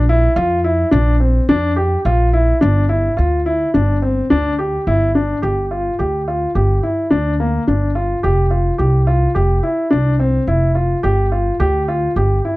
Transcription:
Already playing: A#1
0.09 E4
0.36 F2 F4
0.64 E4
0.91 A#1 D4
1.20 C4
1.49 F2 D4
1.76 G4
2.05 A#1 F4
2.33 E4
2.61 G1 D4
2.89 E4
3.17 D2 F4
3.46 E4
3.74 G1 D4
4.02 C4
4.30 D2 D4
4.59 G4
4.87 G1 E4
5.15 D4
5.42 G1 G4
5.71 F4
5.99 D2 G4
6.28 F4
6.55 G1 G4
6.83 E4
7.10 D2 D4
7.40 A#3
7.67 G1 D4
7.95 F4
8.23 F1 G4
8.50 F4
8.78 C2 G4
9.07 F4
9.34 F1 G4
9.63 E4
9.90 C2 D4
10.19 C4
10.47 F1 E4
10.75 F4
11.03 G1 G4
11.32 F4
11.60 D2 G4
11.88 F4
12.16 G1 G4
12.45 E4

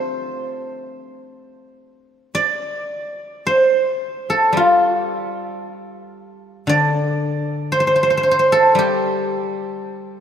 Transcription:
Already playing: A3 C4 D4 F4 G4 A4 C5
2.35 D5
3.47 C5
4.30 A4
4.53 G3
4.57 F4
4.86 F#4
5.04 G4
6.67 D3 D5
7.72 C5
7.80 C5
7.87 C5
7.96 C5
8.03 C5
8.10 C5
8.17 C5
8.23 C5
8.31 C5
8.39 C5
8.52 A4
8.75 G3 G4

